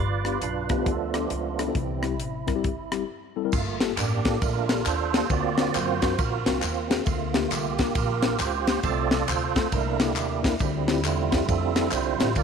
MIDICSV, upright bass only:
0, 0, Header, 1, 2, 480
1, 0, Start_track
1, 0, Tempo, 442478
1, 1901, Time_signature, 4, 2, 24, 8
1, 13487, End_track
2, 0, Start_track
2, 0, Title_t, "Upright bass"
2, 0, Program_c, 0, 32
2, 0, Note_on_c, 0, 31, 98
2, 380, Note_off_c, 0, 31, 0
2, 452, Note_on_c, 0, 35, 89
2, 863, Note_off_c, 0, 35, 0
2, 936, Note_on_c, 0, 38, 82
2, 1346, Note_off_c, 0, 38, 0
2, 1414, Note_on_c, 0, 37, 88
2, 1826, Note_off_c, 0, 37, 0
2, 1901, Note_on_c, 0, 36, 88
2, 2379, Note_off_c, 0, 36, 0
2, 2379, Note_on_c, 0, 33, 80
2, 2869, Note_off_c, 0, 33, 0
2, 2869, Note_on_c, 0, 31, 87
2, 3277, Note_off_c, 0, 31, 0
2, 3829, Note_on_c, 0, 31, 100
2, 4238, Note_off_c, 0, 31, 0
2, 4311, Note_on_c, 0, 33, 88
2, 4719, Note_off_c, 0, 33, 0
2, 4795, Note_on_c, 0, 34, 89
2, 5201, Note_off_c, 0, 34, 0
2, 5272, Note_on_c, 0, 39, 98
2, 5680, Note_off_c, 0, 39, 0
2, 5750, Note_on_c, 0, 38, 110
2, 6158, Note_off_c, 0, 38, 0
2, 6235, Note_on_c, 0, 42, 93
2, 6641, Note_off_c, 0, 42, 0
2, 6715, Note_on_c, 0, 34, 95
2, 6971, Note_off_c, 0, 34, 0
2, 7015, Note_on_c, 0, 36, 96
2, 7163, Note_off_c, 0, 36, 0
2, 7188, Note_on_c, 0, 39, 89
2, 7596, Note_off_c, 0, 39, 0
2, 7668, Note_on_c, 0, 38, 110
2, 8075, Note_off_c, 0, 38, 0
2, 8148, Note_on_c, 0, 36, 94
2, 8555, Note_off_c, 0, 36, 0
2, 8632, Note_on_c, 0, 34, 95
2, 9036, Note_off_c, 0, 34, 0
2, 9105, Note_on_c, 0, 37, 102
2, 9512, Note_off_c, 0, 37, 0
2, 9588, Note_on_c, 0, 36, 105
2, 9993, Note_off_c, 0, 36, 0
2, 10069, Note_on_c, 0, 38, 88
2, 10473, Note_off_c, 0, 38, 0
2, 10547, Note_on_c, 0, 36, 96
2, 11028, Note_off_c, 0, 36, 0
2, 11028, Note_on_c, 0, 39, 89
2, 11431, Note_off_c, 0, 39, 0
2, 11504, Note_on_c, 0, 38, 113
2, 11982, Note_off_c, 0, 38, 0
2, 11982, Note_on_c, 0, 40, 88
2, 12385, Note_off_c, 0, 40, 0
2, 12463, Note_on_c, 0, 41, 98
2, 12864, Note_off_c, 0, 41, 0
2, 12926, Note_on_c, 0, 36, 104
2, 13186, Note_off_c, 0, 36, 0
2, 13232, Note_on_c, 0, 33, 88
2, 13381, Note_off_c, 0, 33, 0
2, 13409, Note_on_c, 0, 38, 115
2, 13487, Note_off_c, 0, 38, 0
2, 13487, End_track
0, 0, End_of_file